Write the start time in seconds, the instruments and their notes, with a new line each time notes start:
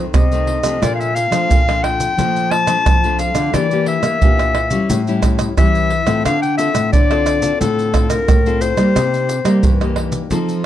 Already playing: nylon-string guitar F2 D#3 A3 C4
0.14 nylon-string guitar C3, clarinet D#5, pandeiro, tamborim, maracas, surdo
0.32 nylon-string guitar D#3 A3 C4, pandeiro, maracas
0.47 pandeiro
0.63 nylon-string guitar C3 F3 A3 D4, pandeiro, tamborim, maracas
0.82 nylon-string guitar A#2, clarinet D5, pandeiro, tamborim, maracas, surdo
0.95 clarinet F5
1.00 clarinet E5, pandeiro, maracas
1.15 clarinet F5, pandeiro, maracas
1.31 nylon-string guitar F3 A3 D4, pandeiro, tamborim, maracas
1.49 nylon-string guitar F2 A#2, pandeiro, maracas, surdo
1.68 nylon-string guitar F3 A3 D4, pandeiro, tamborim, maracas
1.83 clarinet G5, pandeiro, tamborim
2.00 pandeiro, maracas
2.17 nylon-string guitar A#2 F3 A3 D4, pandeiro, maracas, surdo
2.36 pandeiro, maracas
2.51 clarinet A5, pandeiro, tamborim
2.67 nylon-string guitar F3 A3 D4, pandeiro, tamborim, maracas
2.86 nylon-string guitar F2 F3, pandeiro, tamborim, maracas, surdo
3.04 nylon-string guitar F3 A3 D4, pandeiro, maracas
3.19 clarinet F5, pandeiro, maracas
3.35 nylon-string guitar D3, pandeiro, tamborim, maracas
3.54 nylon-string guitar E3 A#3 D4 G4, clarinet D5, pandeiro, tamborim, maracas, surdo
3.71 nylon-string guitar A#3 D4 G4, pandeiro, maracas
3.86 clarinet E5, pandeiro
4.03 nylon-string guitar A#3, pandeiro, tamborim, maracas
4.21 nylon-string guitar A#2 E3 A#3 D4 G4, pandeiro, maracas, surdo
4.39 pandeiro, tamborim, maracas
4.55 pandeiro, tamborim
4.71 nylon-string guitar G3 C#4 E4, pandeiro, maracas
4.89 nylon-string guitar A2, pandeiro, maracas, surdo
5.07 nylon-string guitar G3 C#4 E4, pandeiro, maracas
5.22 pandeiro, tamborim, maracas, surdo
5.39 pandeiro, tamborim, maracas
5.57 nylon-string guitar E3 G3 C#4 E4, clarinet E5, pandeiro, tamborim, maracas, surdo
5.75 pandeiro, maracas
5.90 pandeiro
6.07 nylon-string guitar A2 C4 F4 A4, pandeiro, tamborim, maracas
6.25 nylon-string guitar D3, clarinet F5, pandeiro, tamborim, maracas, surdo
6.42 clarinet G5, pandeiro, maracas
6.58 nylon-string guitar C4 F4 A4, clarinet E5, pandeiro, maracas
6.74 nylon-string guitar A2, pandeiro, tamborim, maracas
6.92 nylon-string guitar A2 D3, clarinet D5, pandeiro, maracas, surdo
7.11 nylon-string guitar C4 F4 A4, pandeiro, tamborim, maracas
7.26 pandeiro, tamborim, maracas
7.42 nylon-string guitar C4 F4 A4, pandeiro, maracas
7.60 nylon-string guitar A2 D3, clarinet A4, pandeiro, maracas, surdo
7.79 pandeiro, maracas
7.94 nylon-string guitar C4 F4 A4, pandeiro, tamborim, maracas, surdo
8.10 clarinet A#4, pandeiro, tamborim, maracas
8.28 nylon-string guitar A2, pandeiro, tamborim, maracas, surdo
8.46 nylon-string guitar C4 F4 A4, pandeiro, maracas
8.61 clarinet C5, pandeiro, maracas
8.77 nylon-string guitar G3 A#3 D#4 G4, pandeiro, tamborim, maracas
8.95 nylon-string guitar C3, pandeiro, tamborim, maracas, surdo
9.14 pandeiro, maracas
9.29 pandeiro, maracas
9.44 nylon-string guitar G3 A#3 D#4 G4, pandeiro, tamborim, maracas
9.63 nylon-string guitar G2 E3, pandeiro, maracas, surdo
9.81 nylon-string guitar A#3 D#4 G4, pandeiro, tamborim, maracas
9.96 pandeiro, tamborim
10.12 pandeiro, maracas
10.31 nylon-string guitar F3 C4 D#4 A4, pandeiro, maracas, surdo
10.49 pandeiro, maracas